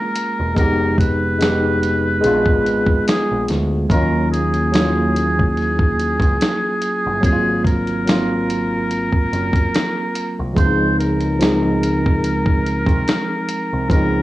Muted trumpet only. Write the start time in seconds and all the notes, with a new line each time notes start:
Already playing: A#4
0.58 A#4
0.99 B4
3.08 G#4
3.91 A#4
4.32 G#4
7.25 G#4
7.66 A#4
10.57 C5
10.99 A#4
13.91 A#4